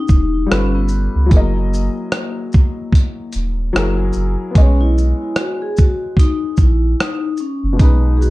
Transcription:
Already playing: E3 B3 D#4 F#4 G4
0.08 E1, kick, shaker
0.46 G3 F4 A4
0.51 G1 C#4 B4, cross-stick, closed hi-hat
0.75 B3
0.88 shaker
1.15 C#2
1.26 F#3 E4
1.31 F#1 A#3 G#4 A#4, kick, closed hi-hat
1.37 D#5
1.74 shaker
2.12 cross-stick, closed hi-hat
2.52 kick, shaker
2.92 kick, closed hi-hat
3.33 D#1, closed hi-hat, shaker
3.73 F#1 F#3 E4 G#4, cross-stick, closed hi-hat
3.78 A#4
4.13 F#1, shaker
4.51 G#3 B3
4.55 B1 C#4 D#5, kick, closed hi-hat
4.61 C#5
4.81 E4
4.98 shaker
5.36 F#4, cross-stick, closed hi-hat
5.62 G#4
5.77 F#4, kick, shaker
6.17 D#4, kick, closed hi-hat
6.57 A#1 E4, kick, shaker
7.00 D#4, cross-stick, closed hi-hat
7.37 C#4, shaker
7.63 F#1
7.73 B2 G#3
7.79 B1 D#4 B4, kick, closed hi-hat
8.17 G#4
8.21 F#4, shaker

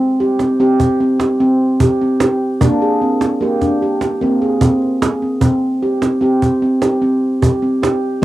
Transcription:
Already playing: C4
0.20 G4
0.39 C4, cajon slap
0.60 C4 G4
0.80 cajon bass
1.00 C4
1.20 G4, cajon slap
1.40 C4
1.80 G4, cajon bass
2.02 C4
2.20 G4, cajon slap
2.61 A#3 D4, cajon bass
2.82 G#4
3.02 C4
3.21 cajon slap
3.41 A#3 G4
3.61 D4, cajon bass, cajon slap
3.82 G4
4.01 cajon slap
4.21 A#3 C4, cajon slap
4.42 G#4
4.61 C4, cajon bass
4.82 cajon slap
5.02 G#4, cajon slap
5.22 C4
5.41 C4, cajon bass
5.83 G4
6.02 C4, cajon slap
6.21 C4 G4
6.42 cajon bass
6.62 C4
6.82 G4, cajon slap
7.02 C4
7.42 G4, cajon bass
7.62 C4
7.83 G4, cajon slap

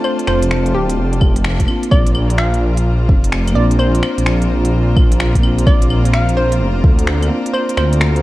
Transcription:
Already playing: A3 C4 D4 F4 C5 D5 A5
0.04 C5, claves
0.19 closed hi-hat
0.27 F1 C5, finger snap, claves
0.42 closed hi-hat
0.51 finger snap
0.66 closed hi-hat
0.75 D1 G4
0.90 closed hi-hat
0.98 F1
1.13 closed hi-hat
1.21 kick, claves
1.36 closed hi-hat
1.44 finger snap
1.60 kick, closed hi-hat
1.66 A#3 C4 D4, claves
1.71 F4
1.83 closed hi-hat
1.91 A#1 F4 C5 D5 A#5, kick, claves
2.07 closed hi-hat
2.15 claves
2.30 closed hi-hat
2.38 F5, finger snap
2.54 closed hi-hat
2.77 closed hi-hat
3.09 F1, kick
3.24 closed hi-hat
3.32 finger snap
3.47 closed hi-hat, claves
3.52 A#3 C4 D5
3.56 A#1 D4 F4
3.71 closed hi-hat
3.79 C5, claves
3.95 closed hi-hat
4.03 finger snap, claves
4.18 A#1, closed hi-hat
4.26 finger snap
4.42 closed hi-hat
4.49 A#1
4.65 closed hi-hat
4.96 kick, claves
5.12 closed hi-hat
5.20 finger snap
5.35 kick, closed hi-hat
5.39 A#3 C4
5.43 D4 F4, claves
5.59 closed hi-hat
5.67 D5, kick, claves
5.82 closed hi-hat
5.90 claves
6.05 closed hi-hat
6.13 F5, finger snap
6.29 closed hi-hat
6.37 C5
6.52 closed hi-hat
6.60 F1
6.84 D2, kick
6.99 closed hi-hat
7.07 finger snap
7.23 closed hi-hat, claves
7.27 A#3 C4
7.32 D4 F4
7.46 closed hi-hat
7.54 C5, claves
7.69 closed hi-hat
7.77 D2 C5, finger snap, claves
7.93 closed hi-hat
8.01 finger snap
8.16 closed hi-hat

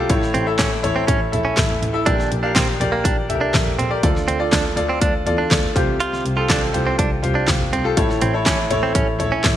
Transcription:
Already playing: E4 F4 G4 A4 A#4 C5 D5
0.10 A1 A2 E4 A4 C#5, kick, closed hi-hat
0.22 snare
0.34 A1 C4, closed hi-hat
0.46 E4 A4 E5
0.59 A1 C#4, kick, snare, clap, closed hi-hat
0.83 A1 E4 A4 C#5, closed hi-hat, floor tom
0.96 C4
1.07 A1 C#4, kick, closed hi-hat
1.32 A#1 E4 A4 E5, closed hi-hat, floor tom
1.45 C#4
1.57 A1, kick, snare, clap, closed hi-hat
1.70 floor tom
1.82 A1, closed hi-hat, floor tom
1.93 E4 A4 E5
2.06 A#1 A#2 D4 G4 A#4 D5, kick, closed hi-hat
2.19 snare
2.31 A#1, closed hi-hat
2.43 D4 G4 A#4 F5
2.55 A#1 C4, kick, snare, clap, closed hi-hat
2.80 A#1 G4 A#4 D5, closed hi-hat, floor tom
2.92 A#3
3.04 A#1 D4, kick, closed hi-hat
3.29 C2 G4 A4 E5, closed hi-hat, floor tom
3.35 A#4
3.41 D4
3.54 A#1, kick, snare, clap, closed hi-hat
3.67 floor tom
3.79 A#1 C4, closed hi-hat, floor tom
3.90 G4 A#4 D5
4.03 D2 D3 F4 A4 D5, kick, closed hi-hat
4.16 snare
4.28 D2 C4, closed hi-hat
4.39 F4 A4 D5
4.52 D2 D4, kick, snare, clap, closed hi-hat
4.76 D2 F4 A4 D5, closed hi-hat, floor tom
4.89 C4
5.01 D2 D4, kick, closed hi-hat
5.26 E2 F4 A4 D5, closed hi-hat, floor tom
5.38 D4
5.51 D2, kick, snare, clap, closed hi-hat
5.64 floor tom
5.75 C2 C3 F4 G4 C5, kick, closed hi-hat, floor tom
6.00 F4, closed hi-hat
6.13 snare
6.25 C2, closed hi-hat
6.36 F4 G4 A4
6.50 C2 D4, kick, snare, clap, closed hi-hat
6.73 C2 F4 G4 C5, closed hi-hat, floor tom
6.87 C4
6.99 C2 D4, kick, closed hi-hat
7.22 C2 F4 G4 C5, closed hi-hat, floor tom
7.35 D4
7.48 C2, kick, snare, clap, closed hi-hat
7.61 floor tom
7.73 C2 C4, closed hi-hat, floor tom
7.84 F4 G4 A4
7.97 A1 A2 E4 A4 C#5, kick, closed hi-hat
8.10 snare
8.21 A1 C4, closed hi-hat
8.33 E4 A4 C#5
8.46 A1 C#4, kick, snare, clap, closed hi-hat
8.70 A1 E4 A4 C#5, closed hi-hat, floor tom
8.83 C4
8.95 A1 C#4, kick, closed hi-hat
9.19 A#1 E4 A4 C#5, closed hi-hat, floor tom
9.32 C#4
9.44 A1, kick, snare, clap, closed hi-hat

